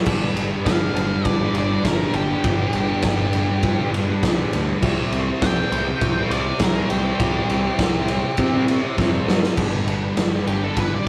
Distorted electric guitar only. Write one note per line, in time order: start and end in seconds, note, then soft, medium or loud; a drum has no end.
0.05 0.34 G2 medium
0.05 0.36 D3 loud
0.10 0.38 G3 loud
0.35 0.64 G2 medium
0.35 0.53 D3 medium
0.35 0.49 G3 medium
0.50 0.69 G3 medium
0.54 0.66 D3 medium
0.65 0.95 G2 medium
0.65 0.97 D3 loud
0.69 0.99 G3 loud
0.95 1.40 G2 medium
0.95 1.11 D3 medium
1.00 1.11 G3 medium
1.11 muted distorted electric guitar stroke soft
1.39 1.58 G3 medium
1.44 1.56 D3 medium
1.54 1.82 G2 medium
1.54 1.70 D3 medium
1.54 1.70 G3 medium
1.70 muted distorted electric guitar stroke medium
1.84 2.43 G2 loud
1.84 2.32 D3 loud
1.88 2.28 G3 loud
2.29 2.48 G3 medium
2.33 2.45 D3 medium
2.45 2.73 G2 medium
2.45 2.75 D3 medium
2.45 2.78 G3 loud
2.74 3.02 G2 medium
2.74 2.91 D3 medium
2.78 2.89 G3 medium
2.89 3.05 D3 medium
2.89 3.08 G3 medium
3.03 3.32 G2 loud
3.03 3.35 D3 loud
3.08 3.37 G3 loud
3.33 3.78 G2 medium
3.33 3.48 D3 medium
3.37 3.49 G3 medium
3.49 muted distorted electric guitar stroke medium
3.77 3.97 G3 medium
3.81 3.94 D3 medium
3.93 4.23 G2 medium
3.93 4.09 D3 medium
3.97 4.09 G3 medium
4.09 muted distorted electric guitar stroke medium
4.24 4.81 G2 loud
4.24 4.70 D3 loud
4.24 4.67 G3 loud
4.67 4.81 D3 medium
4.67 4.84 G3 medium
4.82 5.11 C3 medium
4.82 5.14 G3 loud
4.86 5.15 C4 loud
5.12 5.40 C3 medium
5.12 5.30 G3 medium
5.12 5.26 C4 medium
5.27 5.43 G3 medium
5.27 5.45 C4 medium
5.41 5.72 C3 loud
5.41 5.74 G3 loud
5.46 5.76 C4 loud
5.72 6.16 C3 medium
5.72 5.88 G3 medium
5.76 5.86 C4 medium
5.88 muted distorted electric guitar stroke medium
6.16 6.32 G3 medium
6.16 6.33 C4 medium
6.31 6.58 C3 medium
6.31 6.46 G3 medium
6.35 6.45 C4 medium
6.46 muted distorted electric guitar stroke medium
6.60 7.18 C3 loud
6.60 7.07 G3 loud
6.60 7.03 C4 loud
7.04 7.20 G3 medium
7.04 7.22 C4 medium
7.19 7.47 C3 medium
7.19 7.49 G3 loud
7.19 7.51 C4 loud
7.48 7.77 C3 medium
7.48 7.66 G3 medium
7.48 7.62 C4 medium
7.63 7.81 C4 medium
7.68 7.79 G3 medium
7.78 8.07 C3 loud
7.78 8.10 G3 loud
7.82 8.11 C4 loud
8.09 8.53 C3 medium
8.09 8.24 G3 medium
8.09 8.23 C4 medium
8.24 muted distorted electric guitar stroke medium
8.51 8.70 C4 medium
8.55 8.68 G3 medium
8.67 8.96 C3 medium
8.67 8.83 G3 medium
8.71 8.82 C4 medium
8.83 muted distorted electric guitar stroke soft
8.97 9.55 C3 medium
8.97 9.44 G3 loud
8.97 9.39 C4 loud
9.40 9.54 C4 medium
9.45 9.57 G3 medium
9.56 9.86 G2 medium
9.56 9.88 D3 loud
9.60 9.89 G3 medium
9.86 10.16 G2 medium
9.86 10.18 D3 medium
9.86 10.20 G3 medium
10.16 10.46 G2 medium
10.16 10.34 D3 medium
10.21 10.31 G3 loud
10.32 10.48 D3 medium
10.32 10.50 G3 medium
10.46 10.91 G2 medium
10.46 10.64 D3 medium
10.46 10.62 G3 medium
10.62 10.94 D3 medium
10.62 10.91 G3 medium
10.92 11.07 D3 medium
10.92 11.08 G3 medium